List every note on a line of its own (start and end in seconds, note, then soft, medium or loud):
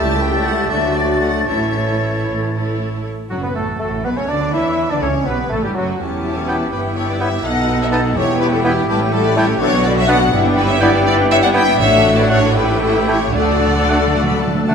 0.00 0.62 C#2 medium
0.00 0.68 G3 medium
0.00 0.19 A3 medium
0.00 2.80 A3 medium
0.00 0.68 E4 medium
0.00 0.20 G4 medium
0.00 0.73 G4 medium
0.00 0.20 A4 medium
0.00 0.20 E5 medium
0.00 0.72 E5 medium
0.00 0.21 A5 medium
0.00 2.80 A6 medium
0.19 0.70 A3 medium
0.19 0.70 G4 medium
0.19 0.70 A4 medium
0.19 0.70 E5 medium
0.19 0.45 G5 medium
0.45 0.71 F#5 medium
0.69 1.39 D2 medium
0.69 1.47 F#3 medium
0.69 0.95 A3 medium
0.69 1.46 D4 medium
0.69 0.95 F#4 medium
0.69 1.48 F#4 medium
0.69 0.96 A4 soft
0.69 0.95 D5 soft
0.69 1.49 D5 soft
0.69 0.96 E5 medium
0.96 1.47 A3 medium
0.96 1.47 F#4 medium
0.96 1.47 A4 medium
0.96 1.22 D5 medium
0.96 1.47 D5 medium
1.21 1.47 F#5 medium
1.47 2.18 A1 medium
1.47 2.18 A2 medium
1.47 2.77 E3 medium
1.47 1.75 A3 soft
1.47 2.80 C#4 medium
1.47 2.77 E4 soft
1.47 1.74 E4 soft
1.47 1.73 A4 soft
1.47 2.80 C#5 soft
1.47 1.73 C#5 soft
1.47 2.26 E5 medium
1.75 2.53 A3 soft
1.75 2.53 E4 soft
1.75 2.52 A4 soft
1.75 2.52 C#5 soft
2.27 2.97 A1 medium
2.27 2.97 A2 medium
2.54 3.05 A3 soft
2.54 3.05 E4 soft
2.54 3.05 A4 soft
2.54 3.05 C#5 soft
3.30 3.42 F#1 medium
3.30 3.43 F#2 soft
3.30 3.42 F#3 soft
3.30 3.37 F#3 soft
3.30 3.37 D4 soft
3.30 3.42 F#4 soft
3.30 3.42 F#4 medium
3.30 3.36 F#4 medium
3.30 3.43 F#4 soft
3.42 3.56 B2 medium
3.42 3.57 B3 soft
3.42 3.55 B3 medium
3.42 3.49 B3 medium
3.42 3.50 G4 soft
3.42 3.55 B4 soft
3.42 3.55 B4 medium
3.42 3.56 B4 medium
3.42 3.55 B4 soft
3.55 3.78 A1 soft
3.55 3.79 A2 soft
3.55 3.79 A3 soft
3.55 3.63 A3 soft
3.55 3.78 A3 soft
3.55 3.80 F#4 soft
3.55 3.78 A4 soft
3.55 3.79 A4 soft
3.55 3.80 A4 soft
3.55 3.67 A4 soft
3.79 4.04 A1 medium
3.79 4.04 A2 medium
3.79 3.90 A3 medium
3.79 4.04 A3 soft
3.79 4.04 A3 medium
3.79 4.07 A3 soft
3.79 4.04 F#4 medium
3.79 3.87 A4 soft
3.79 3.91 A4 medium
3.79 4.04 A4 medium
3.79 4.07 A4 soft
4.04 4.16 B1 medium
4.04 4.17 B2 medium
4.04 4.09 B3 medium
4.04 4.10 B3 medium
4.04 4.10 B3 soft
4.04 4.17 B3 medium
4.04 4.09 G4 medium
4.04 4.09 B4 medium
4.04 4.17 B4 medium
4.04 4.10 B4 medium
4.04 4.19 B4 soft
4.16 4.29 C#3 soft
4.16 4.28 C#4 medium
4.16 4.29 C#4 medium
4.16 4.30 C#4 medium
4.16 4.22 A4 soft
4.16 4.29 C#5 medium
4.16 4.29 C#5 soft
4.16 4.29 C#5 medium
4.16 4.31 C#5 medium
4.28 4.53 D2 medium
4.28 4.54 D3 medium
4.28 4.53 D4 medium
4.28 4.40 D4 medium
4.28 4.41 D4 medium
4.28 4.57 D4 medium
4.28 4.36 B4 medium
4.28 4.54 D5 medium
4.28 4.53 D5 medium
4.28 4.54 D5 medium
4.53 4.90 E2 medium
4.53 4.91 E3 medium
4.53 4.90 E4 medium
4.53 4.91 E4 medium
4.53 4.90 E4 medium
4.53 4.93 E4 medium
4.53 4.90 C#5 medium
4.53 4.91 E5 medium
4.53 4.90 E5 medium
4.53 4.92 E5 medium
4.53 4.90 E5 medium
4.90 5.03 D3 medium
4.90 4.95 D4 medium
4.90 5.01 D4 medium
4.90 5.03 D4 medium
4.90 5.04 D4 medium
4.90 5.03 B4 medium
4.90 4.95 D5 medium
4.90 5.03 D5 medium
4.90 5.04 D5 medium
5.02 5.27 C#2 medium
5.02 5.27 C#3 medium
5.02 5.27 C#4 medium
5.02 5.10 C#4 medium
5.02 5.15 C#4 medium
5.02 5.28 C#4 medium
5.02 5.08 A4 medium
5.02 5.27 C#5 medium
5.02 5.14 C#5 medium
5.02 5.27 C#5 medium
5.02 5.14 C#5 medium
5.25 5.35 B1 medium
5.25 5.35 B2 medium
5.25 5.33 B3 medium
5.25 5.49 B3 medium
5.25 5.51 B3 medium
5.25 5.39 B3 medium
5.25 5.51 G4 medium
5.25 5.51 B4 medium
5.25 5.39 B4 medium
5.25 5.52 B4 medium
5.49 5.56 A1 medium
5.49 5.56 A2 medium
5.49 5.55 A3 medium
5.49 5.63 A3 medium
5.49 5.64 A3 medium
5.49 5.58 A3 medium
5.49 5.64 F#4 medium
5.49 5.64 A4 medium
5.49 5.63 A4 medium
5.49 5.58 A4 medium
5.49 5.65 A4 medium
5.63 5.75 G2 soft
5.63 5.74 G3 medium
5.63 5.76 G3 medium
5.63 5.70 G3 medium
5.63 5.76 E4 soft
5.63 5.77 G4 soft
5.63 5.76 G4 medium
5.63 5.70 G4 soft
5.63 5.70 G4 medium
5.74 5.99 F#1 medium
5.74 5.99 F#2 medium
5.74 5.86 F#3 soft
5.74 6.00 F#3 medium
5.74 5.88 F#3 medium
5.74 5.82 D4 medium
5.74 5.99 F#4 medium
5.74 6.00 F#4 medium
5.74 5.88 F#4 soft
5.99 6.68 E1 medium
5.99 6.68 E2 medium
5.99 8.85 B3 medium
5.99 6.69 C#4 soft
5.99 6.69 E4 soft
5.99 7.41 E4 medium
5.99 7.40 G4 soft
5.99 6.69 A5 soft
6.24 6.36 E4 medium
6.24 6.36 G4 medium
6.36 6.49 A4 medium
6.36 6.48 C#5 medium
6.48 6.57 B3 medium
6.48 6.57 E4 medium
6.48 6.72 G4 medium
6.48 6.70 B4 medium
6.48 6.57 G5 medium
6.71 7.42 G1 medium
6.71 7.42 G2 medium
6.71 7.43 B3 medium
6.71 7.43 E4 medium
6.71 6.79 G4 medium
6.71 6.79 B4 medium
6.71 7.45 G5 medium
6.95 7.08 A4 medium
6.95 7.08 C#5 medium
7.08 7.15 B4 medium
7.08 7.20 D5 medium
7.19 7.29 B3 medium
7.19 7.29 E4 medium
7.19 7.28 C#5 medium
7.19 7.44 E5 medium
7.19 7.28 G5 medium
7.43 8.15 B1 medium
7.43 8.15 B2 medium
7.43 8.15 B3 medium
7.43 8.17 D#4 medium
7.43 8.15 D#4 medium
7.43 8.17 A4 medium
7.43 7.80 D#5 medium
7.43 7.80 F#5 medium
7.43 8.15 F#5 medium
7.81 7.86 C#5 medium
7.81 7.86 E5 medium
7.92 8.01 B3 medium
7.92 8.01 D#4 medium
7.92 7.98 B4 medium
7.92 8.00 D#5 medium
7.92 8.01 A5 medium
8.16 8.89 E1 medium
8.16 8.89 E2 medium
8.16 8.87 B3 medium
8.16 8.87 E4 medium
8.16 9.62 E4 medium
8.16 9.62 G4 medium
8.16 8.22 A4 medium
8.16 8.41 C#5 medium
8.16 8.89 G5 medium
8.40 8.46 G4 medium
8.40 8.45 B4 loud
8.53 8.65 F#4 medium
8.53 8.65 A4 medium
8.64 8.73 B3 medium
8.64 8.73 E4 medium
8.64 8.71 E4 medium
8.64 8.89 G4 medium
8.64 8.74 G5 medium
8.88 9.57 A1 medium
8.88 9.57 A2 medium
8.88 9.00 G3 medium
8.88 9.60 A3 medium
8.88 9.00 E4 medium
8.88 8.95 G4 medium
8.88 8.98 B4 loud
8.88 9.00 A5 medium
9.00 9.13 A3 medium
9.00 9.12 C#4 medium
9.00 9.13 G5 medium
9.12 9.25 G3 medium
9.12 9.25 E4 medium
9.12 9.26 F#4 medium
9.12 9.25 A4 loud
9.12 9.25 A5 medium
9.24 9.37 A3 medium
9.24 9.37 C#4 medium
9.24 9.37 B4 medium
9.24 9.38 D5 medium
9.24 9.38 G5 medium
9.37 9.48 G3 medium
9.37 9.45 A3 medium
9.37 9.48 E4 medium
9.37 9.46 E4 medium
9.37 9.43 A4 medium
9.37 9.59 C#5 medium
9.37 9.47 G5 medium
9.37 9.48 A5 medium
9.48 9.61 A3 medium
9.48 9.61 C#4 medium
9.48 9.62 G5 medium
9.60 10.32 B1 medium
9.60 10.32 B2 medium
9.60 9.72 D3 medium
9.60 11.76 B3 medium
9.60 9.72 D4 medium
9.60 10.34 D4 medium
9.60 10.33 F#4 medium
9.60 9.68 A4 loud
9.60 9.84 C#5 loud
9.60 9.72 D5 medium
9.72 9.85 F#3 medium
9.72 9.85 B3 medium
9.72 9.85 F#5 medium
9.84 9.97 D3 medium
9.84 9.97 D4 medium
9.84 9.97 B4 medium
9.84 9.97 D5 loud
9.84 9.97 D5 medium
9.96 10.09 F#3 medium
9.96 10.09 B3 medium
9.96 10.04 C#5 medium
9.96 10.09 E5 loud
9.96 10.09 F#5 medium
10.07 10.20 D3 medium
10.07 10.18 B3 medium
10.07 10.20 D4 medium
10.07 10.17 D4 medium
10.07 10.20 D5 medium
10.07 10.16 D5 medium
10.07 10.32 F#5 loud
10.07 10.17 F#5 medium
10.20 10.33 F#3 medium
10.20 10.33 B3 medium
10.20 10.33 F#5 medium
10.33 11.77 G1 medium
10.33 11.77 G2 loud
10.33 10.43 D4 medium
10.33 11.80 E4 medium
10.33 10.45 E4 medium
10.33 11.63 G4 medium
10.33 10.45 E5 medium
10.45 10.57 B3 medium
10.45 10.55 D4 medium
10.45 10.58 G5 medium
10.56 10.69 D4 medium
10.56 10.69 E4 medium
10.56 10.62 G4 medium
10.56 10.68 B4 loud
10.56 10.69 E5 medium
10.69 10.82 B3 medium
10.69 10.80 D4 medium
10.69 10.75 C#5 medium
10.69 10.82 E5 loud
10.69 10.82 G5 medium
10.80 10.91 B3 medium
10.80 10.93 D4 medium
10.80 10.93 E4 medium
10.80 10.90 E4 medium
10.80 10.87 B4 medium
10.80 11.05 D5 loud
10.80 10.93 E5 medium
10.80 10.90 G5 medium
10.94 11.06 B3 medium
10.94 11.04 D4 medium
10.94 11.06 G5 medium
11.05 11.17 D4 medium
11.05 11.18 E4 medium
11.05 11.30 B4 loud
11.05 11.14 D5 loud
11.05 11.19 E5 medium
11.18 11.31 B3 medium
11.18 11.29 D4 medium
11.18 11.31 G5 medium
11.30 11.42 D4 medium
11.30 11.42 E4 medium
11.30 11.43 C#5 loud
11.30 11.42 E5 medium
11.30 11.36 E5 loud
11.42 11.56 B3 medium
11.42 11.54 D4 medium
11.42 11.48 D5 medium
11.42 11.48 F#5 loud
11.42 11.56 G5 medium
11.54 11.63 B3 medium
11.54 11.67 D4 medium
11.54 11.64 E4 medium
11.54 11.68 E4 medium
11.54 11.67 E5 medium
11.54 11.79 E5 loud
11.54 11.79 G5 loud
11.54 11.64 G5 medium
11.66 11.80 B3 medium
11.66 11.79 D4 medium
11.66 11.79 G5 medium
11.79 13.31 A1 medium
11.79 13.31 A2 loud
11.79 12.52 A2 medium
11.79 12.52 A3 medium
11.79 12.52 D4 medium
11.79 12.56 F#4 medium
11.79 12.18 C#5 loud
11.79 12.16 E5 loud
11.79 12.52 F#5 medium
12.18 12.23 B4 medium
12.18 12.31 D5 medium
12.29 12.39 A3 medium
12.29 12.39 D4 medium
12.29 12.37 A4 medium
12.29 12.56 C#5 loud
12.29 12.39 F#5 medium
12.54 13.34 A3 medium
12.54 13.35 E4 medium
12.54 13.36 E4 medium
12.54 13.34 G4 medium
12.54 12.62 G4 medium
12.54 12.82 B4 medium
12.54 13.35 G5 medium
12.82 12.95 F#4 medium
12.82 12.95 A4 medium
12.96 13.09 G4 medium
12.96 13.09 B4 medium
13.08 13.18 A3 medium
13.08 13.17 E4 medium
13.08 13.16 A4 medium
13.08 13.36 C#5 medium
13.08 13.18 G5 medium
13.33 14.73 D2 medium
13.33 14.73 D3 medium
13.33 13.43 D3 soft
13.33 14.70 A3 medium
13.33 14.66 A3 medium
13.33 14.68 D4 medium
13.33 14.71 D4 medium
13.33 14.66 F#4 medium
13.33 14.66 A4 medium
13.33 14.66 D5 loud
13.33 14.08 F#5 medium
13.44 13.51 D3 soft
13.52 13.59 D3 soft
13.60 13.67 D3 soft
13.68 13.74 D3 soft
13.76 13.82 D3 soft
13.83 13.90 D3 soft
13.89 13.98 D3 medium
13.89 13.99 A3 medium
13.89 13.99 D4 medium
13.89 13.98 F#5 medium
14.00 14.06 D3 medium
14.07 14.15 D3 medium
14.14 14.22 D3 medium
14.14 14.27 F#5 medium
14.24 14.30 D3 medium
14.24 14.40 B5 medium
14.31 14.38 D3 medium
14.38 14.46 D3 medium
14.38 14.64 A5 medium
14.47 14.54 D3 medium
14.55 14.62 D3 medium
14.63 14.70 D3 medium
14.63 14.75 A5 medium
14.68 14.75 D3 loud
14.68 14.75 A3 medium
14.68 14.75 D4 medium
14.68 14.75 F#5 medium